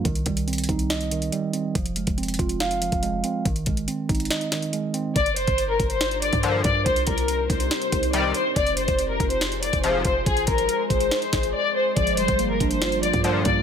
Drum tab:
HH |x-x-x-x-xxxxx-x-x-x-x-x-x---x---|x-x-x-x-xxxxx-x-x-x-x-x-x---x---|x-x-x-x-x---xxxxx-x-x-x-x---x---|x-x-x-x-x---x-x-x-x-x-x-x---x---|
SD |----------------o---------------|----------------o---------------|----------------o---o-----------|----------------o---------------|
BD |o---o-------o-------------------|o-----o-----o---------o---------|o---o-------o-------------------|o-----o-----o---------o-----o---|

HH |x-x-x-x-x---x-x-x-x-x-x-x---x---|x-x-x-x-x---x-x-x-x-x-x-x---x---|x-x-x-x-x---x-x-x-x-x-x---------|x-x-x-x-x---x-x-x-x-x-x-x---x---|
SD |----------------o---------------|----------------o---------------|----------------o---o-----------|----------------o---------------|
BD |o---o-------o-------o-----------|o-----o-----o---------o-----o---|o---o-------o-------o-----------|o-----o-----o---------o-----o---|